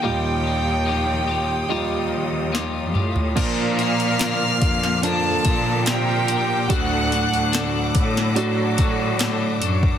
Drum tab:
CC |----------------|x---------------|----------------|
HH |----------------|o-ooo-o-o-o-o-o-|o-ooo-o-o-o-o-o-|
SD |------------o---|----o--o----o---|----o--o----o---|
T2 |--------------o-|----------------|----------------|
FT |---------------o|----------------|----------------|
BD |----------------|o-----o---o-----|o-----o---o----o|